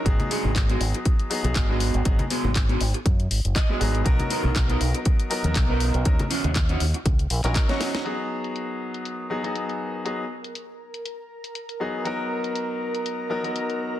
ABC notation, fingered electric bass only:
X:1
M:4/4
L:1/16
Q:"Swing 16ths" 1/4=120
K:G#m
V:1 name="Fingered electric bass" clef=bass
G,,, z2 G,,,3 G,,, z4 B,,, G,,,3 G,,, | G,,, z2 G,,,3 G,,, z F,,2 G,,, F,,, z2 G,,,2 | B,,, z2 B,,,3 B,,, z4 D,, B,,,3 B,,, | D,, z2 D,,3 D,, z C,,2 A,,, A,,, z4 |
z16 | z16 | z16 |]